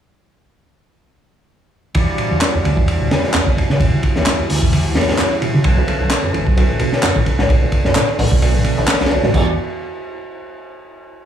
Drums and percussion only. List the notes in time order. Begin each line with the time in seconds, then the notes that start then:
1.95 kick, ride
2.18 ride
2.41 snare, clap, ride
2.65 ride
2.77 kick
2.88 ride
3.11 snare, ride
3.24 snare
3.34 snare, clap, ride
3.47 kick
3.57 kick, ride
3.70 snare
3.80 kick, ride
4.03 kick, ride
4.16 snare
4.26 snare, clap, ride
4.39 ride
4.50 open hi-hat
4.62 kick
4.73 ride
4.95 snare, ride
5.01 snare, ride
5.09 snare, ride
5.13 snare, ride
5.18 snare, clap, ride
5.42 ride
5.64 kick, ride
5.88 ride
6.10 snare, clap, ride
6.34 ride
6.47 kick
6.57 ride
6.79 ride
6.93 snare
7.03 snare, clap, ride
7.16 kick
7.26 kick, ride
7.39 snare
7.49 kick, ride
7.72 kick, ride
7.85 snare
7.95 snare, clap, ride
8.09 ride
8.19 open hi-hat
8.32 kick
8.42 ride
8.64 ride
8.88 snare, clap, ride
8.94 snare, ride
9.01 snare, ride
9.06 snare, ride
9.11 ride
9.23 snare
9.34 kick, crash